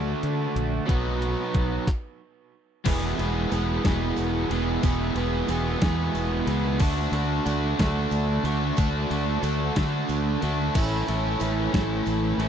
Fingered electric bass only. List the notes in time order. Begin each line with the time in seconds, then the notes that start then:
Already playing: D2
0.23 D3
0.56 A#1
0.89 B1
1.55 B1
2.87 E1
3.19 E1
3.52 E1
3.85 E1
4.18 E1
4.50 E1
4.84 E1
5.15 E1
5.49 E1
5.82 E2
6.14 E1
6.47 C#2
6.80 D2
7.12 D2
7.46 D2
7.80 D2
8.11 D2
8.44 D2
8.79 D2
9.10 D2
9.43 D2
9.77 D3
10.09 D2
10.43 D2
10.75 A1
11.09 A1
11.41 A1
11.74 A1
12.06 A1
12.38 A1